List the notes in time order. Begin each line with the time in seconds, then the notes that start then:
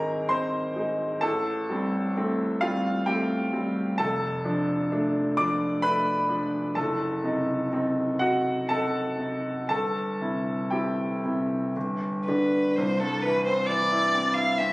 Already playing: G#1 G#3 C4 D#4 G#4 A#4 G#5 A#5
0.29 C4 D#4 C5 C6
0.76 G#3 D#4
1.21 A1 A4 A5
1.70 G3 C4
2.17 A3 C4
2.61 G3 C4 F4 F5
3.06 A3 C4 G4 G5
3.53 G3 C4
3.98 F1 A4 A5
4.45 F3 D4
4.92 A3 D4
5.37 F3 D4 D5 D6
5.82 A3 D4 B4 B5
6.29 F3 D4
6.75 F#1 A4 A5
7.24 C3 D#4
7.73 C4 D#4
8.19 C3 D#4 F#4 F#5
8.69 C4 D#4 A4 A5
9.19 C3 D#4
9.69 G1 A4 A5
10.21 C3 E4
10.70 C4 E4 G4 G5
11.25 C3 E4
11.76 G1
12.26 D3 D4 B4
12.76 C2 C5
13.00 G2 A4
13.22 E3 B4
13.46 C4 C5
13.66 E3 D5
13.92 E4
14.14 C4
14.34 E4 F5
14.58 C4 E5